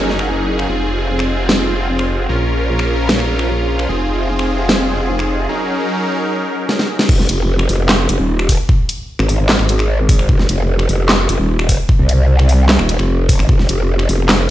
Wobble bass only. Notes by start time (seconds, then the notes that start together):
Already playing: F#1
0.69 F1
2.29 A#1
3.89 F1
7.09 F1
7.29 F1
7.69 F1
8.09 F1
8.19 D#1
9.19 G#1
9.59 G#1
10.29 F1
10.49 F1
10.89 F1
11.29 F1
11.39 D#1
11.99 C2
12.79 D#1
12.99 F1
13.39 G#1
13.49 F1
13.69 F1
14.09 F1